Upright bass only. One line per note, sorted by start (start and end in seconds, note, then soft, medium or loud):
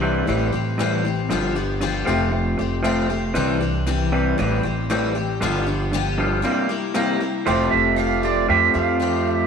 0.00 0.25 C2 medium
0.28 0.52 A1 medium
0.54 1.27 A1 medium
1.30 2.04 G1 medium
2.08 2.55 F1 loud
2.60 3.32 F1 medium
3.36 4.35 C2 loud
4.39 4.63 A1 medium
4.65 5.38 A1 medium
5.42 6.41 G1 loud
7.47 7.70 F1 medium
7.73 8.46 F1 medium
8.50 8.73 F2 medium
8.75 9.47 F2 medium